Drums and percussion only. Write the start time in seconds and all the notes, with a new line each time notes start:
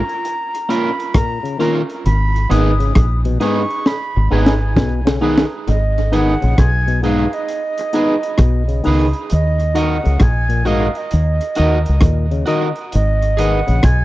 0.09 closed hi-hat
0.25 closed hi-hat
0.55 closed hi-hat
0.70 closed hi-hat
1.00 closed hi-hat
1.14 kick, cross-stick, closed hi-hat
1.45 closed hi-hat
1.60 closed hi-hat
1.90 closed hi-hat
2.06 closed hi-hat
2.36 closed hi-hat
2.51 closed hi-hat
2.80 closed hi-hat
2.95 kick, cross-stick, closed hi-hat
3.25 closed hi-hat
3.41 cross-stick, closed hi-hat
3.70 closed hi-hat
3.86 snare
4.46 snare
4.77 kick, snare
5.07 snare
5.38 snare
5.68 closed hi-hat
5.98 closed hi-hat
6.13 closed hi-hat
6.42 closed hi-hat
6.58 kick, cross-stick, closed hi-hat
6.88 closed hi-hat
7.03 closed hi-hat
7.33 closed hi-hat
7.48 closed hi-hat
7.78 closed hi-hat
7.93 closed hi-hat
8.23 closed hi-hat
8.38 kick, cross-stick, closed hi-hat
8.69 closed hi-hat
8.84 open hi-hat
9.13 closed hi-hat
9.30 closed hi-hat
9.60 closed hi-hat
9.76 closed hi-hat
10.05 closed hi-hat
10.20 kick, cross-stick, closed hi-hat
10.50 closed hi-hat
10.66 closed hi-hat
10.95 closed hi-hat
11.11 closed hi-hat
11.41 closed hi-hat
11.55 closed hi-hat
11.86 closed hi-hat
12.01 kick, cross-stick, closed hi-hat
12.31 closed hi-hat
12.46 closed hi-hat
12.76 closed hi-hat
12.92 closed hi-hat
13.22 closed hi-hat
13.38 closed hi-hat
13.68 closed hi-hat
13.83 kick, cross-stick, closed hi-hat